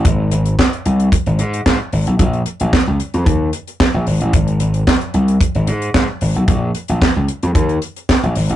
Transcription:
<<
  \new Staff \with { instrumentName = "Slap bass" } { \clef bass \time 4/4 \key ees \mixolydian \tempo 4 = 112 aes,,8 aes,,8 r8 c,8 r16 aes,,16 aes,8 aes,16 r16 aes,,16 ces,16 | bes,,8 r16 bes,,16 r16 des,16 r16 f,16 ees,8 r8. bes,,16 aes,,16 a,,16 | aes,,8 aes,,8 r8 c,8 r16 aes,,16 aes,8 aes,16 r16 aes,,16 ces,16 | bes,,8 r16 bes,,16 r16 des,16 r16 f,16 ees,8 r8. bes,,16 aes,,16 a,,16 | }
  \new DrumStaff \with { instrumentName = "Drums" } \drummode { \time 4/4 <hh bd>8 hh16 hh16 <hc bd sn>16 hh16 hh16 hh16 <hh bd>16 hh16 hh16 hh16 <hc bd sn>8 hho16 hh16 | <hh bd>16 hh16 hh16 hh16 <hc bd sn>8 hh16 hh16 <hh bd>8 hh16 hh16 <hc bd sn>8 hho16 hh16 | <hh bd>16 hh16 hh16 hh16 <hc bd sn>16 hh16 hh16 hh16 <hh bd>16 hh16 hh16 hh16 <hc bd sn>8 hho16 hh16 | <hh bd>8 hh16 hh16 <hc bd sn>8 hh16 hh16 <hh bd>16 hh16 hh16 hh16 <hc bd sn>16 hh16 hho16 hh16 | }
>>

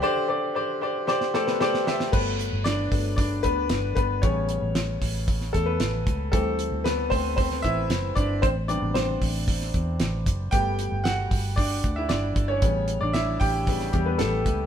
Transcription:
<<
  \new Staff \with { instrumentName = "Upright piano" } { \time 4/4 \key g \major \tempo 4 = 114 << { <g' c'' d''>8 <g' c'' d''>8 <g' c'' d''>8 <g' c'' d''>8 <g' c'' d''>8 <g' c'' d''>8 <g' c'' d''>8 <g' c'' e''>8 | r1 | r1 | r1 |
r1 | r1 | r1 | } \\ { r2 r8 <a a'>16 <b b'>16 <a a'>4 | b'4 <d' d''>4 <d' d''>8 <b b'>4 <b b'>8 | <cis' cis''>2 r8 <a a'>16 <b b'>4~ <b b'>16 | <a a'>4 <b b'>8 <c' c''>8 <c' c''>8 <e' e''>4 <d' d''>8 |
<c' c''>8 <d' d''>8 <c' c''>4 r2 | <g' g''>4 <fis' fis''>4 <d' d''>8. <e' e''>16 <d' d''>8. <cis' cis''>16~ | <cis' cis''>8. <d' d''>16 <e' e''>8 <g' g''>4 <g g'>16 <b b'>16 <a a'>4 | } >> }
  \new Staff \with { instrumentName = "Upright piano" } { \clef bass \time 4/4 \key g \major d4. r2 r8 | <fis a b>4. <fis a b>8 r2 | <cis g b>1 | <e g c'>1 |
r8 <c g b>8 r2. | <g a b>1 | <cis g b>8 r4. <cis g b>8 r4. | }
  \new Staff \with { instrumentName = "Fingered electric bass" } { \clef bass \time 4/4 \key g \major r1 | g,,8. g,,8. g,,4 d,8 g,,8 g,,8 | a,,8. a,,8. a,,4 e,8 a,,8 cis,8 | d,8. d,8. d,4 a,,8 fis,,8 g,,8 |
a,,8. a,,8. a,,4 e,8 a,,8 fis,,8 | g,,8. g,,8. g,,4 d,8 g,,8 g,,8 | a,,8. a,,8. a,,4 e,8 a,,8 cis,8 | }
  \new DrumStaff \with { instrumentName = "Drums" } \drummode { \time 4/4 r4 r4 sn16 sn16 sn16 sn16 sn16 sn16 sn16 sn16 | <cymc bd>8 <hho hhp>8 <hho hhp sn>8 <hho hhp bd>8 <hho hhp bd>8 <hho hhp bd>8 <hho hhp sn>8 <hho hhp bd>8 | <hho hhp bd>8 <hho hhp>8 <hho hhp sn>8 <hho hhp bd>8 <hho hhp bd>16 sn16 <hho hhp bd>8 <hho hhp sn>8 <hho hhp bd>8 | <hho hhp bd>8 <hho hhp>8 <hho hhp sn>8 <hho hhp bd>8 <hho hhp bd>16 sn16 <hho hhp bd>8 <hho hhp sn>8 <hho hhp bd>8 |
<hho hhp bd>8 <hho hhp>8 <hho hhp sn>8 <hho hhp bd>8 <hho hhp bd>16 sn16 <hho hhp bd>8 <hho hhp sn>8 <hho hhp bd>8 | <hho hhp bd>8 <hho hhp>8 <hho hhp sn>8 <hho hhp bd>8 <hho hhp bd>8 <hho hhp bd>8 <hho hhp sn>8 <hho hhp bd>8 | <hho hhp bd>8 <hho hhp>8 <hho hhp sn>8 <hho hhp bd>8 <hho hhp bd>16 sn16 <hho hhp bd>8 <hho hhp sn>8 <hho hhp bd>8 | }
>>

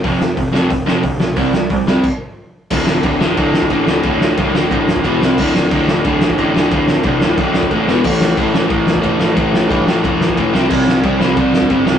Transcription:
<<
  \new Staff \with { instrumentName = "Overdriven electric guitar" } { \clef bass \time 4/4 \key c \lydian \tempo 4 = 180 <f, c f>8 <f, c>8 <f, c>8 <f, c f>8 <f, c>8 <f, c f>8 <f, c>8 <f, c>8 | <c g c'>8 <c g>8 <c g>8 <c g c'>8 r2 | <d, a, d>4 <d, a, d>8 <d, a, d>8 <d, a, d>4 <d, a, d>8 <d, a, d>8 | <d, a, d>4 <d, a, d>8 <d, a, d>8 <d, a, d>4 <e, b, e>8 <c g c'>8 |
<d, a, d>4 <d, a, d>8 <d, a, d>8 <d, a, d>4 <d, a, d>8 <d, a, d>8 | <d, a, d>4 <d, a, d>8 <d, a, d>8 <d, a, d>4 <d, a, d>8 <e, b, e>8 | <a, e a>4 <a, e a>8 <a, e a>8 <a, e a>4 <a, e a>8 <a, e a>8 | <a, e a>4 <a, e a>8 <a, e a>8 <a, e a>4 <a, e a>8 <c g c'>8 |
<c g c'>4 <c g c'>8 <c g c'>8 <c g c'>4 <c g c'>8 <c g c'>8 | }
  \new Staff \with { instrumentName = "Picked electric bass" } { \clef bass \time 4/4 \key c \lydian f,,8 f,,8 f,,8 f,,8 f,,8 f,,8 d,8 b,,8 | c,8 c,8 c,8 c,8 r2 | d,,8 d,,8 d,,4 d,,8 a,,8 a,,8 d,,8 | d,,8 d,,8 c,8 d,,8 a,,8 d,,8 e,,8 c,8 |
d,,8 d,,8 d,,4 d,,8 a,,8 a,,8 d,,8 | d,,8 d,,8 c,8 d,,8 a,,8 d,,8 a,,8 e,,8 | a,,8 a,,8 a,,4 a,,8 e,8 e,,8 a,,8 | a,,8 a,,8 g,8 a,,8 e,,8 a,,8 e,,8 c,8 |
c,8 c,8 c,4 c,8 g,8 g,,8 c,8 | }
  \new DrumStaff \with { instrumentName = "Drums" } \drummode { \time 4/4 <hho bd>8 sn8 <hho bd>8 sn8 <hho bd>8 sn8 <hho bd>8 sn8 | <hho bd>8 sn8 <hho bd>8 sn8 <cymc bd>4 r4 | <cymc bd>8 sn8 <bd cymr>8 sn8 <bd cymr>8 sn16 bd16 <bd cymr>8 sn8 | <bd cymr>8 sn8 <bd cymr>8 sn8 <bd cymr>8 sn16 bd16 <bd cymr>8 sn8 |
<cymc bd>8 sn8 <bd cymr>8 sn8 <bd cymr>8 sn16 bd16 <bd cymr>8 sn8 | <bd cymr>8 sn8 <bd cymr>8 sn8 <bd cymr>8 sn16 bd16 <bd cymr>8 sn8 | <cymc bd>8 sn8 <bd cymr>8 sn8 <bd cymr>8 sn16 bd16 <bd cymr>8 sn8 | <bd cymr>8 sn8 <bd cymr>8 sn8 <bd cymr>8 sn16 bd16 <bd cymr>8 sn8 |
<cymc bd>8 sn8 <bd cymr>8 sn8 <bd cymr>8 sn16 bd16 <bd cymr>8 sn8 | }
>>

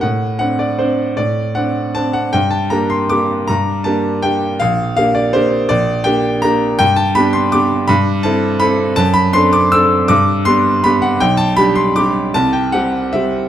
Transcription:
\new Staff \with { instrumentName = "Grand piano" } { \time 3/4 \key g \minor \tempo 4 = 160 << { fis''4 fis''8 d''8 c''4 | d''4 fis''4 a''8 fis''8 | g''8 a''8 bes''8 c'''8 d'''4 | bes''4 a''4 g''4 |
f''4 f''8 d''8 c''4 | d''4 g''4 bes''8 r8 | \key g \major g''8 a''8 b''8 c'''8 d'''4 | b''4 a''4 b''4 |
a''8 b''8 c'''8 d'''8 e'''4 | d'''4 c'''4 b''8 fis''8 | g''8 a''8 b''8 c'''8 d'''4 | a''8 g''8 fis''4 e''4 | } \\ { a,4 <c' d'>4 <c' d'>4 | a,4 <c' d'>4 <c' d'>4 | g,4 <bes d' g'>4 <bes d' g'>4 | g,4 <bes d' g'>4 <bes d' g'>4 |
bes,,4 <bes d' g'>4 <bes d' g'>4 | bes,,4 <bes d' g'>4 <bes d' g'>4 | g,4 <b d' g'>4 <b d' g'>4 | g,4 <c' e' a'>4 <c' e' a'>4 |
fis,4 <c' d' a'>4 <c' d' a'>4 | g,4 <b d' g'>4 <b d' g'>4 | b,,4 <g d' g'>4 <g d' g'>4 | c,4 <g c' g'>4 <g c' g'>4 | } >> }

